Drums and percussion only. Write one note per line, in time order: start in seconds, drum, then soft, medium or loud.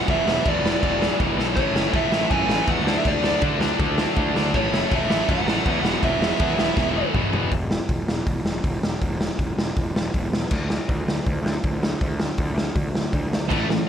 0.08 kick loud
0.08 crash medium
0.28 snare loud
0.46 kick loud
0.46 crash medium
0.66 snare loud
0.83 kick loud
0.83 crash medium
1.02 snare loud
1.20 kick loud
1.20 crash medium
1.39 snare medium
1.57 kick loud
1.57 crash medium
1.76 snare loud
1.94 kick loud
1.94 crash medium
2.12 snare loud
2.31 kick loud
2.31 crash medium
2.50 snare loud
2.67 kick loud
2.67 crash medium
2.87 snare loud
3.05 kick loud
3.05 crash medium
3.24 snare loud
3.41 kick loud
3.41 crash medium
3.61 snare loud
3.79 kick loud
3.79 crash medium
3.98 snare loud
4.16 kick loud
4.16 crash medium
4.36 snare loud
4.54 kick loud
4.54 crash medium
4.74 snare loud
4.92 kick loud
4.92 crash medium
5.10 snare loud
5.29 kick loud
5.29 crash medium
5.48 snare loud
5.66 kick loud
5.66 crash medium
5.85 snare loud
6.03 kick loud
6.03 crash medium
6.22 snare loud
6.39 kick loud
6.39 crash medium
6.59 snare loud
6.77 kick loud
6.77 snare medium
7.14 kick loud
7.14 mid tom medium
7.33 floor tom loud
7.51 kick loud
7.51 open hi-hat medium
7.71 snare loud
7.89 kick loud
7.89 open hi-hat medium
8.08 snare loud
8.27 kick loud
8.27 open hi-hat medium
8.46 snare loud
8.64 kick loud
8.64 open hi-hat medium
8.83 snare loud
9.02 kick loud
9.02 open hi-hat medium
9.21 snare loud
9.39 kick loud
9.39 open hi-hat medium
9.59 snare loud
9.77 kick loud
9.77 open hi-hat medium
9.96 snare loud
10.14 kick loud
10.14 open hi-hat medium
10.33 snare loud
10.51 kick loud
10.51 crash medium
10.70 snare loud
10.89 kick loud
10.89 open hi-hat medium
11.08 snare loud
11.26 kick loud
11.26 open hi-hat medium
11.46 snare loud
11.63 kick loud
11.63 open hi-hat medium
11.83 snare loud
12.01 kick loud
12.01 open hi-hat medium
12.20 snare loud
12.38 kick loud
12.38 open hi-hat medium
12.58 snare loud
12.76 kick loud
12.76 open hi-hat medium
12.95 snare loud
13.13 kick loud
13.13 open hi-hat medium
13.33 snare loud
13.50 kick loud
13.50 crash medium
13.70 snare loud